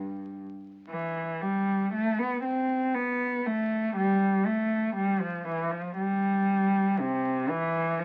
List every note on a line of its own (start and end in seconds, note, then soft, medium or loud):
0.00 0.38 G2 medium
0.89 1.38 E3 medium
1.41 1.93 G3 medium
1.93 2.18 A3 medium
2.19 2.44 B3 medium
2.43 2.93 C4 medium
2.94 3.45 B3 medium
3.46 3.97 A3 medium
3.96 4.46 G3 medium
4.46 4.96 A3 medium
4.96 5.21 G3 medium
5.20 5.47 F3 medium
5.48 5.73 E3 medium
5.71 5.98 F3 medium
5.97 6.98 G3 medium
7.00 7.50 C3 medium
7.49 7.99 E3 medium
7.99 8.05 F3 medium